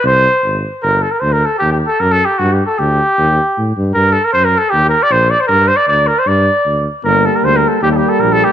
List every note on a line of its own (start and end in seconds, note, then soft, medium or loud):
0.04 0.26 C2 loud
0.04 0.60 C5 loud
0.43 0.65 G#1 medium
0.83 1.04 G1 medium
0.83 1.03 A#4 loud
1.02 1.12 A4 medium
1.11 1.21 A#4 medium
1.20 1.44 D2 medium
1.20 1.34 C5 medium
1.32 1.47 A#4 medium
1.45 1.58 A4 medium
1.58 1.83 D#2 medium
1.58 1.71 G4 medium
1.72 1.78 G4 medium
1.87 2.01 A4 medium
2.00 2.22 F#2 medium
2.00 2.13 A#4 medium
2.12 2.26 A4 loud
2.25 2.40 G4 medium
2.38 2.61 G2 loud
2.38 2.54 F#4 medium
2.53 2.65 G4 medium
2.66 2.80 A4 medium
2.78 3.00 D2 medium
2.78 3.75 G4 loud
3.18 3.39 D#2 medium
3.58 3.74 A2 medium
3.77 3.93 G2 medium
3.94 4.17 G2 medium
3.94 4.14 A#4 loud
4.12 4.26 A4 medium
4.24 4.32 A#4 medium
4.33 4.55 F#2 medium
4.33 4.46 C5 loud
4.44 4.59 A#4 loud
4.58 4.71 A4 medium
4.70 4.94 D#2 medium
4.70 4.84 G4 loud
4.89 5.04 A#4 medium
5.03 5.13 D5 loud
5.11 5.32 A#1 medium
5.11 5.31 C5 loud
5.30 5.42 D5 loud
5.40 5.46 C5 medium
5.47 5.71 G2 medium
5.47 5.69 A#4 loud
5.68 5.78 C5 loud
5.76 5.87 D5 medium
5.87 6.10 D2 medium
5.87 6.08 D5 loud
6.07 6.20 A#4 medium
6.19 6.28 C5 medium
6.27 6.48 G2 medium
6.27 6.85 D5 loud
6.66 6.87 D2 medium
7.04 7.26 G1 medium
7.04 7.78 G3 medium
7.04 7.78 A#3 medium
7.04 7.27 A#4 loud
7.25 7.37 A4 medium
7.35 7.46 A#4 medium
7.43 7.64 D2 medium
7.43 7.58 C5 loud
7.56 7.69 A#4 medium
7.68 7.81 A4 medium
7.82 8.03 D#2 medium
7.82 8.52 G3 medium
7.82 8.52 A#3 medium
7.82 7.91 G4 loud
7.91 7.98 A4 medium
7.96 8.10 G4 medium
8.09 8.22 A4 medium
8.20 8.42 A#1 medium
8.20 8.34 A#4 medium
8.32 8.46 A4 loud
8.44 8.52 G4 medium